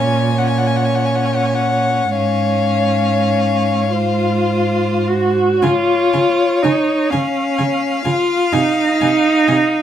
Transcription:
Already playing: A#2 C#4 C#5 G#5
0.38 C#4 C#5 F#5
0.47 G#5
0.58 F#5
0.67 G#5
0.76 F#5
0.85 G#5
0.95 F#5
1.05 G#5
1.15 F#5
1.25 G#5
1.35 F#5
1.45 G#5
1.55 F#5
2.17 G#2 C#4 C#5 F5
3.92 F4 C5
5.07 F#4
5.61 C#3 F4 C#5 G#5
6.13 C#3 G#5
6.63 C#3 D#4 G#5
7.10 C#3 C#4 F5 G#5
7.58 C#3 G#5
8.05 C#3 F4 G#5
8.52 C3 D#4 G#5
9.01 C3 G#5
9.48 C3 G#5

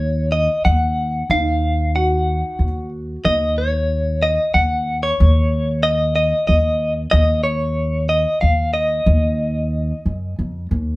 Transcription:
Already playing: D#2 C#5
0.32 D#5
0.65 D#2 F#5
1.30 D#2 D#4 F5
1.95 F#4 F#5
2.59 D#2
3.25 D#2 D#5
3.58 C#5
4.23 D#5
4.54 D#2 F#5
5.03 C#5
5.20 D#2
5.83 D#5
6.16 D#5
6.47 D#2 D#5
7.11 D#2 D#5
7.44 C#5
8.09 D#5
8.41 D#2 F5
8.74 D#5
9.06 D#2
10.06 F#2
10.39 F2
10.71 D#2

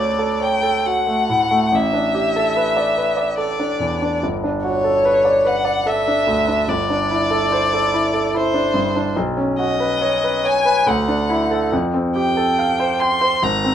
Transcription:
Already playing: D2 A3 F#4 A4 C#5 D5
0.19 A4
0.41 C#5 G5
0.63 A4
0.86 F#4 F#5
1.07 A3
1.29 A2
1.51 A3
1.72 A1 E5
1.93 D4
2.15 G4
2.36 A4
2.57 B4
2.77 D5
2.97 B4
3.17 D5
3.38 A4 D5
3.59 D4
3.80 E2
4.02 D4
4.23 G1
4.44 D4
4.64 F#4 C#5
4.84 A4
5.05 B4
5.25 D5
5.45 B4 F#5
5.65 D5
5.86 A4 E5
6.07 D4
6.27 D2
6.48 D4
6.68 G1 D5
6.90 D4
7.10 E4
7.31 A4
7.52 C5
7.73 A4
7.94 E4
8.14 A4
8.34 E4 C5
8.54 D4
8.74 G2
8.96 D4
9.16 B1
9.37 C#4
9.59 F#4 D#5
9.80 B4
10.01 C#5
10.24 B4
10.44 C#5 G#5
10.65 B4
10.87 D2 F#5
11.08 D4
11.30 E4
11.51 A4
11.72 F2
11.94 C4
12.16 G4 G5
12.37 A4
12.59 F5
12.80 C5
13.00 G5 C6
13.21 C5
13.43 G#1 A#5
13.64 C4

